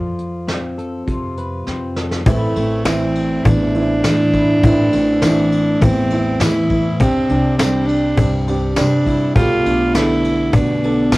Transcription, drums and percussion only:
0.19 closed hi-hat soft
0.48 snare medium
0.48 closed hi-hat medium
0.78 closed hi-hat soft
1.08 kick medium
1.08 closed hi-hat medium
1.37 closed hi-hat soft
1.67 snare soft
1.96 snare medium
2.12 snare medium
2.26 cajon bass loud
2.26 kick medium
2.26 ride medium
2.56 ride soft
2.85 cajon slap loud
2.85 snare medium
2.85 ride medium
2.85 tambourine medium
3.15 ride soft
3.31 cajon slap soft
3.45 kick medium
3.45 cajon bass loud
3.45 ride medium
3.75 cajon slap soft
3.75 ride medium
4.04 snare loud
4.04 cajon slap medium
4.04 ride medium
4.04 tambourine loud
4.34 kick medium
4.34 ride medium
4.63 kick medium
4.63 cajon bass medium
4.63 ride medium
4.92 ride medium
5.22 snare medium
5.22 cajon slap medium
5.22 ride medium
5.22 tambourine medium
5.52 ride medium
5.67 cajon slap soft
5.81 kick medium
5.81 cajon bass medium
5.81 ride medium
6.10 ride medium
6.40 snare loud
6.40 cajon slap medium
6.40 ride medium
6.40 tambourine loud
6.70 kick medium
6.70 cajon slap soft
6.70 ride medium
7.00 kick medium
7.00 cajon bass medium
7.00 ride medium
7.29 ride soft
7.59 snare medium
7.59 cajon slap loud
7.59 ride medium
7.59 tambourine loud
7.88 ride medium
8.03 cajon slap soft
8.18 cajon bass medium
8.18 kick medium
8.18 ride medium
8.47 cajon slap soft
8.47 ride soft
8.76 cajon slap medium
8.76 snare medium
8.76 ride medium
8.76 tambourine loud
9.06 kick medium
9.06 cajon slap soft
9.06 ride medium
9.36 cajon bass medium
9.36 kick medium
9.36 ride medium
9.51 cajon slap soft
9.66 ride medium
9.95 cajon slap medium
9.95 snare medium
9.95 ride medium
9.95 tambourine medium
10.24 cajon slap soft
10.24 ride medium
10.39 cajon slap soft
10.53 cajon bass medium
10.53 kick medium
10.53 ride medium
10.84 ride medium
11.12 cajon bass medium
11.12 cajon slap medium
11.12 snare loud
11.12 ride medium
11.12 tambourine loud

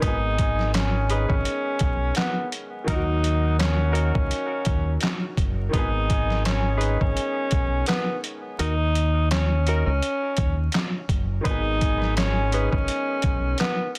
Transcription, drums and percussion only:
0.02 kick loud
0.02 closed hi-hat medium
0.39 kick medium
0.39 closed hi-hat medium
0.59 snare soft
0.74 snare loud
0.74 clap medium
0.74 closed hi-hat loud
1.10 closed hi-hat medium
1.30 kick loud
1.45 closed hi-hat medium
1.79 kick loud
1.79 closed hi-hat medium
2.15 snare loud
2.15 clap medium
2.15 closed hi-hat medium
2.52 closed hi-hat medium
2.88 kick loud
2.88 closed hi-hat medium
3.24 closed hi-hat medium
3.60 snare loud
3.60 clap medium
3.60 closed hi-hat loud
3.95 closed hi-hat medium
4.15 kick medium
4.31 closed hi-hat medium
4.65 kick medium
4.65 closed hi-hat medium
5.01 snare loud
5.01 clap medium
5.01 closed hi-hat medium
5.37 kick medium
5.37 closed hi-hat medium
5.73 kick loud
5.73 closed hi-hat medium
6.10 kick medium
6.10 closed hi-hat medium
6.30 snare soft
6.45 snare loud
6.45 clap medium
6.45 closed hi-hat loud
6.81 closed hi-hat medium
7.01 kick loud
7.17 closed hi-hat medium
7.51 kick loud
7.51 closed hi-hat medium
7.86 snare loud
7.86 clap medium
7.86 closed hi-hat medium
8.24 closed hi-hat medium
8.59 closed hi-hat medium
8.95 closed hi-hat medium
9.31 snare loud
9.31 clap medium
9.31 closed hi-hat loud
9.67 closed hi-hat medium
10.02 closed hi-hat medium
10.37 kick medium
10.37 closed hi-hat medium
10.72 snare loud
10.72 clap medium
10.72 closed hi-hat medium
11.09 kick medium
11.09 closed hi-hat medium
11.45 kick loud
11.45 closed hi-hat medium
11.81 kick medium
11.81 closed hi-hat medium
12.02 snare soft
12.17 snare loud
12.17 clap medium
12.17 closed hi-hat loud
12.52 closed hi-hat medium
12.73 kick medium
12.88 closed hi-hat medium
13.22 kick loud
13.22 closed hi-hat medium
13.58 snare loud
13.58 clap medium
13.58 closed hi-hat medium
13.95 closed hi-hat medium

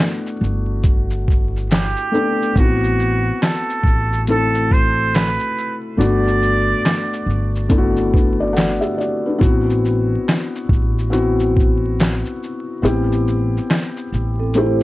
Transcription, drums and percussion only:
0.00 snare medium
0.00 clap medium
0.00 closed hi-hat medium
0.00 shaker medium
0.27 shaker medium
0.43 shaker soft
0.84 kick medium
0.84 closed hi-hat medium
0.84 shaker medium
1.11 shaker medium
1.28 kick medium
1.28 shaker soft
1.56 shaker soft
1.71 snare loud
1.71 clap medium
1.71 closed hi-hat medium
1.71 shaker medium
1.97 shaker soft
2.15 shaker soft
2.42 shaker soft
2.56 kick loud
2.56 closed hi-hat medium
2.56 shaker medium
2.84 shaker soft
3.00 shaker soft
3.43 snare medium
3.43 clap medium
3.43 closed hi-hat medium
3.43 shaker medium
3.70 shaker medium
3.84 kick medium
3.84 shaker soft
4.13 shaker soft
4.27 closed hi-hat medium
4.27 shaker medium
4.54 shaker medium
4.71 kick medium
4.71 shaker soft
5.15 snare loud
5.15 clap medium
5.15 closed hi-hat medium
5.15 shaker medium
5.40 shaker medium
5.58 shaker soft
6.01 closed hi-hat medium
6.01 shaker medium
6.28 shaker soft
6.43 shaker soft
6.86 snare medium
6.86 clap medium
6.86 closed hi-hat medium
6.86 shaker medium
7.13 shaker medium
7.30 shaker soft
7.56 shaker soft
7.70 kick medium
7.70 closed hi-hat medium
7.70 shaker medium
7.97 shaker soft
8.14 kick medium
8.14 shaker soft
8.57 snare loud
8.57 clap medium
8.57 closed hi-hat medium
8.57 shaker medium
8.82 shaker medium
9.01 shaker soft
9.41 kick loud
9.41 closed hi-hat medium
9.41 shaker medium
9.70 shaker soft
9.85 shaker soft
10.29 snare medium
10.29 clap medium
10.29 closed hi-hat medium
10.29 shaker medium
10.56 shaker medium
10.69 kick medium
10.69 shaker soft
10.99 shaker soft
11.13 closed hi-hat medium
11.13 shaker medium
11.40 shaker medium
11.57 kick medium
11.57 shaker soft
12.00 snare loud
12.00 clap loud
12.00 closed hi-hat medium
12.00 shaker soft
12.26 shaker medium
12.43 shaker soft
12.85 closed hi-hat medium
12.85 shaker medium
13.12 shaker soft
13.28 shaker soft
13.57 shaker soft
13.71 snare loud
13.71 clap medium
13.71 closed hi-hat medium
13.71 shaker medium
13.97 shaker medium
14.13 shaker soft
14.54 closed hi-hat medium
14.54 shaker medium

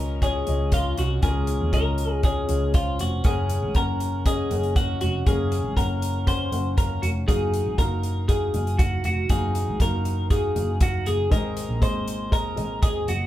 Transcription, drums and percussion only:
0.22 kick medium
0.22 closed hi-hat medium
0.47 closed hi-hat medium
0.72 kick medium
0.72 closed hi-hat medium
0.97 closed hi-hat medium
1.23 kick medium
1.23 closed hi-hat medium
1.47 closed hi-hat medium
1.73 kick medium
1.73 closed hi-hat medium
1.98 closed hi-hat medium
2.23 kick medium
2.23 closed hi-hat medium
2.49 closed hi-hat medium
2.74 kick medium
2.74 closed hi-hat medium
2.99 closed hi-hat medium
3.24 kick medium
3.24 closed hi-hat medium
3.50 closed hi-hat medium
3.75 kick medium
3.75 closed hi-hat medium
4.00 closed hi-hat medium
4.26 kick medium
4.26 closed hi-hat medium
4.51 closed hi-hat medium
4.63 closed hi-hat soft
4.76 kick medium
4.76 closed hi-hat medium
5.01 closed hi-hat medium
5.27 kick medium
5.27 closed hi-hat medium
5.52 closed hi-hat medium
5.77 kick medium
5.77 closed hi-hat medium
6.02 closed hi-hat medium
6.27 kick medium
6.27 closed hi-hat medium
6.52 closed hi-hat medium
6.78 kick medium
6.78 closed hi-hat medium
7.03 closed hi-hat medium
7.28 kick medium
7.28 closed hi-hat medium
7.54 closed hi-hat medium
7.78 kick medium
7.78 closed hi-hat medium
8.03 closed hi-hat medium
8.29 kick medium
8.29 closed hi-hat medium
8.54 closed hi-hat medium
8.67 closed hi-hat soft
8.79 kick loud
8.79 closed hi-hat medium
9.04 closed hi-hat medium
9.29 kick medium
9.29 closed hi-hat medium
9.55 closed hi-hat medium
9.80 kick medium
9.80 closed hi-hat medium
10.05 closed hi-hat medium
10.30 kick medium
10.30 closed hi-hat medium
10.56 closed hi-hat medium
10.81 kick loud
10.81 closed hi-hat medium
11.06 closed hi-hat medium
11.31 kick medium
11.31 closed hi-hat medium
11.57 closed hi-hat medium
11.82 kick medium
11.82 closed hi-hat medium
12.08 closed hi-hat medium
12.32 kick medium
12.32 closed hi-hat medium
12.57 closed hi-hat medium
12.83 kick loud
12.83 closed hi-hat medium
13.08 closed hi-hat medium

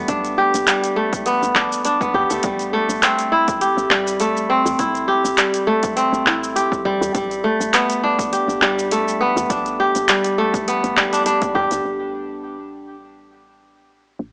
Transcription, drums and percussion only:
0.08 kick loud
0.08 closed hi-hat medium
0.08 shaker medium
0.25 closed hi-hat soft
0.25 shaker soft
0.54 closed hi-hat soft
0.54 shaker medium
0.67 clap medium
0.67 closed hi-hat medium
0.67 shaker medium
0.84 closed hi-hat soft
0.84 shaker soft
1.13 kick loud
1.13 closed hi-hat soft
1.13 shaker medium
1.26 closed hi-hat medium
1.26 shaker medium
1.43 shaker soft
1.55 kick medium
1.55 clap medium
1.72 shaker medium
1.85 closed hi-hat medium
1.85 shaker medium
2.01 kick loud
2.01 shaker soft
2.14 kick medium
2.30 shaker medium
2.43 kick loud
2.43 closed hi-hat medium
2.43 shaker medium
2.59 closed hi-hat soft
2.59 shaker soft
2.90 shaker medium
3.03 clap medium
3.03 closed hi-hat medium
3.03 shaker medium
3.19 closed hi-hat soft
3.19 shaker soft
3.48 kick loud
3.48 closed hi-hat soft
3.48 shaker medium
3.61 closed hi-hat medium
3.61 shaker medium
3.78 shaker soft
3.91 clap medium
4.07 shaker medium
4.20 closed hi-hat medium
4.20 shaker medium
4.37 shaker soft
4.66 shaker medium
4.79 kick loud
4.79 closed hi-hat medium
4.79 shaker medium
4.95 closed hi-hat soft
4.95 shaker soft
5.25 shaker medium
5.38 clap medium
5.38 closed hi-hat medium
5.38 shaker medium
5.54 closed hi-hat soft
5.54 shaker soft
5.83 kick loud
5.83 closed hi-hat soft
5.83 shaker medium
5.97 closed hi-hat medium
5.97 shaker medium
6.14 shaker soft
6.26 kick medium
6.26 clap medium
6.44 shaker medium
6.56 closed hi-hat medium
6.56 shaker medium
6.72 kick loud
6.72 shaker soft
6.85 kick medium
7.03 shaker medium
7.15 kick loud
7.15 closed hi-hat medium
7.15 shaker medium
7.31 closed hi-hat soft
7.31 shaker soft
7.61 shaker medium
7.74 clap medium
7.74 closed hi-hat medium
7.74 shaker medium
7.90 closed hi-hat soft
7.90 shaker soft
8.19 kick loud
8.19 closed hi-hat soft
8.19 shaker medium
8.33 closed hi-hat medium
8.33 shaker soft
8.50 shaker soft
8.62 clap medium
8.79 shaker medium
8.91 closed hi-hat medium
8.91 shaker medium
9.08 shaker soft
9.37 shaker medium
9.50 kick loud
9.50 closed hi-hat medium
9.50 shaker medium
9.66 closed hi-hat soft
9.66 shaker soft
9.95 closed hi-hat soft
9.95 shaker medium
10.09 clap medium
10.09 closed hi-hat medium
10.09 shaker medium
10.24 closed hi-hat soft
10.24 shaker soft
10.54 kick loud
10.54 closed hi-hat soft
10.54 shaker medium
10.68 closed hi-hat medium
10.68 shaker medium
10.84 closed hi-hat soft
10.84 shaker soft
10.97 kick medium
10.97 clap medium
11.13 closed hi-hat soft
11.13 shaker medium
11.26 closed hi-hat medium
11.26 shaker medium
11.42 kick loud
11.42 closed hi-hat soft
11.42 shaker soft
11.55 kick medium
11.71 closed hi-hat soft
11.71 shaker medium

